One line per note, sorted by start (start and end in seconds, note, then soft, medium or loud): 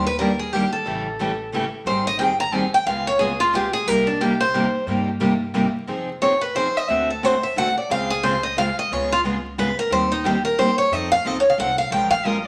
0.00 0.65 D#2 medium
0.07 0.18 B4 medium
0.19 0.30 D#3 medium
0.19 0.30 G3 loud
0.19 0.30 A#3 loud
0.19 0.30 D4 medium
0.19 0.30 G4 loud
0.19 0.38 A#4 medium
0.39 0.53 G#4 medium
0.53 0.63 D#3 medium
0.53 0.63 G3 medium
0.53 0.64 A#3 medium
0.53 0.64 D4 medium
0.53 0.72 G4 medium
0.53 0.64 G4 medium
0.73 1.49 A4 medium
0.85 1.66 A1 medium
0.85 1.06 C#3 medium
0.85 1.06 E3 medium
0.85 1.06 G3 medium
0.85 1.07 A3 medium
0.85 1.06 C#4 medium
0.85 1.06 E4 medium
0.85 1.07 G4 medium
0.85 1.07 A4 medium
1.19 1.30 C#3 medium
1.19 1.30 E3 medium
1.19 1.30 G3 loud
1.19 1.31 A3 medium
1.19 1.30 C#4 medium
1.19 1.31 E4 medium
1.19 1.31 G4 medium
1.19 1.31 A4 medium
1.52 1.64 C#3 medium
1.52 1.63 E3 medium
1.52 1.64 G3 medium
1.52 1.64 A3 loud
1.52 1.64 C#4 medium
1.52 1.64 E4 medium
1.52 1.64 G4 loud
1.52 1.64 A4 medium
1.85 2.66 G#1 medium
1.85 2.06 D#3 medium
1.85 2.06 G3 medium
1.85 2.07 C4 medium
1.85 2.07 D#4 medium
1.85 2.07 G#4 medium
1.85 2.06 C5 medium
2.07 2.18 D#5 loud
2.19 2.31 D#3 medium
2.19 2.31 G3 medium
2.19 2.31 C4 medium
2.19 2.31 D#4 loud
2.19 2.31 G#4 medium
2.19 2.39 G5 medium
2.40 2.54 A#5 loud
2.54 2.64 D#3 medium
2.54 2.65 G3 medium
2.54 2.65 C4 loud
2.54 2.65 D#4 medium
2.54 2.65 G#4 loud
2.54 2.73 G#5 medium
2.74 2.86 G5 medium
2.86 3.67 C#2 medium
2.86 3.07 C#3 medium
2.86 3.07 G#3 medium
2.86 3.07 B3 medium
2.86 3.08 F4 medium
2.86 3.08 G#4 medium
2.86 3.06 F5 medium
3.07 3.20 C#5 loud
3.19 3.31 C#3 loud
3.19 3.31 G#3 loud
3.19 3.31 B3 loud
3.19 3.31 F4 loud
3.19 3.39 G#4 medium
3.19 3.31 G#4 loud
3.40 3.53 F4 medium
3.54 3.65 C#3 medium
3.54 3.65 G#3 medium
3.54 3.65 B3 medium
3.54 3.65 F4 medium
3.54 3.73 G4 medium
3.54 3.65 G#4 loud
3.73 3.88 G#4 medium
3.86 4.67 C2 medium
3.86 4.07 C3 medium
3.86 4.07 G3 medium
3.86 4.08 A#3 medium
3.86 4.08 D#4 medium
3.86 4.08 G4 medium
3.86 4.07 A#4 medium
4.07 4.20 D4 medium
4.21 4.31 C3 loud
4.21 4.32 G3 medium
4.21 4.32 A#3 loud
4.21 4.32 D#4 loud
4.21 4.40 G4 medium
4.21 4.32 G4 loud
4.41 4.84 C5 loud
4.54 4.65 C3 medium
4.54 4.65 G3 medium
4.54 4.65 A#3 loud
4.54 4.65 D#4 loud
4.54 4.66 G4 medium
4.86 5.68 G2 medium
4.86 5.08 C3 medium
4.86 5.08 G3 medium
4.86 5.08 A#3 medium
4.86 5.08 D#4 medium
4.86 5.08 G4 medium
5.20 5.31 C3 medium
5.20 5.32 G3 loud
5.20 5.32 A#3 loud
5.20 5.32 D#4 loud
5.20 5.32 G4 loud
5.55 5.66 C3 medium
5.55 5.66 G3 loud
5.55 5.66 A#3 loud
5.55 5.66 D#4 medium
5.55 5.66 G4 loud
5.88 6.69 F1 medium
5.88 6.08 F3 medium
5.88 6.09 C4 medium
5.88 6.09 D#4 medium
5.88 6.09 G#4 medium
6.22 6.33 F3 medium
6.22 6.33 C4 medium
6.22 6.33 D#4 medium
6.22 6.33 G#4 medium
6.22 6.41 C#5 medium
6.41 6.55 B4 medium
6.55 6.66 F3 medium
6.55 6.67 C4 medium
6.55 6.67 D#4 loud
6.55 6.67 G#4 medium
6.55 6.77 C5 medium
6.77 6.89 D#5 medium
6.89 7.70 D2 medium
6.89 7.09 D3 medium
6.89 7.09 A3 medium
6.89 7.10 C4 medium
6.89 7.10 F#4 medium
6.89 7.10 A4 medium
6.89 7.08 E5 medium
7.10 7.25 A4 medium
7.23 7.34 D3 medium
7.23 7.34 A3 medium
7.23 7.34 C4 loud
7.23 7.35 F#4 loud
7.23 7.35 A4 loud
7.23 7.43 C5 medium
7.43 7.56 E5 medium
7.57 7.68 D3 medium
7.57 7.68 A3 medium
7.57 7.68 C4 medium
7.57 7.68 F#4 medium
7.57 7.68 A4 medium
7.57 7.77 F#5 loud
7.78 7.90 D5 soft
7.90 8.71 C#2 medium
7.90 8.11 C#3 medium
7.90 8.11 G#3 medium
7.90 8.11 C4 medium
7.90 8.11 F4 medium
7.90 8.12 G#4 medium
7.90 8.10 F5 loud
8.10 8.23 G#4 medium
8.23 8.35 C#3 loud
8.23 8.35 G#3 loud
8.23 8.35 C4 loud
8.23 8.35 F4 loud
8.23 8.35 G#4 loud
8.23 8.43 C5 medium
8.43 8.57 D#5 loud
8.57 8.68 C#3 medium
8.57 8.68 G#3 medium
8.57 8.68 C4 medium
8.57 8.68 F4 loud
8.57 8.69 G#4 medium
8.57 8.77 F5 loud
8.79 8.93 D#5 medium
8.91 9.71 C#2 medium
8.91 9.11 C#3 medium
8.91 9.12 G#3 medium
8.91 9.12 B3 medium
8.91 9.12 F4 medium
8.91 9.12 G#4 medium
8.91 9.11 C#5 medium
9.12 9.20 F4 loud
9.25 9.35 C#3 medium
9.25 9.36 G#3 loud
9.25 9.36 B3 loud
9.25 9.36 F4 loud
9.25 9.36 G#4 loud
9.58 9.69 C#3 medium
9.58 9.69 G#3 medium
9.58 9.69 B3 medium
9.58 9.69 F4 medium
9.58 9.70 G#4 loud
9.58 9.78 B4 medium
9.79 9.92 A#4 medium
9.91 10.71 D#2 medium
9.91 10.12 D#3 medium
9.91 10.12 G3 medium
9.91 10.12 A#3 medium
9.91 10.12 C4 medium
9.91 10.12 D#4 medium
9.91 10.12 G4 medium
9.91 10.11 C5 loud
9.91 10.13 C5 medium
10.12 10.25 D#4 medium
10.25 10.36 D#3 medium
10.25 10.36 G3 medium
10.25 10.36 A#3 loud
10.25 10.36 C4 loud
10.25 10.36 D#4 medium
10.25 10.44 G4 medium
10.25 10.36 G4 loud
10.25 10.37 C5 medium
10.45 10.58 A#4 medium
10.58 10.69 D#3 medium
10.58 10.69 G3 medium
10.58 10.70 A#3 medium
10.58 10.69 C4 medium
10.58 10.70 D#4 medium
10.58 10.70 G4 medium
10.58 10.78 C5 medium
10.58 10.70 C5 loud
10.78 10.93 C#5 medium
10.91 11.18 F2 medium
10.91 11.12 F3 medium
10.91 11.12 C4 medium
10.91 11.13 D#4 medium
10.91 11.13 A4 medium
10.91 11.11 D#5 medium
11.12 11.27 F5 loud
11.25 11.54 C#2 medium
11.25 11.36 F3 medium
11.25 11.36 C4 medium
11.25 11.36 D#4 medium
11.25 11.37 A4 loud
11.25 11.37 D#5 medium
11.40 11.49 C#5 medium
11.50 11.59 F5 medium
11.58 11.86 C2 medium
11.58 11.70 F3 medium
11.58 11.70 C4 loud
11.58 11.70 D#4 medium
11.58 11.70 A4 loud
11.58 11.78 F#5 loud
11.78 11.91 F5 medium
11.90 12.47 A#1 medium
11.90 12.13 F3 medium
11.90 12.13 G#3 medium
11.90 12.13 C#4 medium
11.90 12.13 F4 medium
11.90 12.13 A#4 medium
11.90 12.10 G5 medium
12.11 12.26 F5 loud
12.25 12.36 F3 loud
12.25 12.36 G#3 medium
12.25 12.36 C#4 medium
12.25 12.36 F4 loud
12.25 12.37 A#4 loud
12.25 12.46 D#5 medium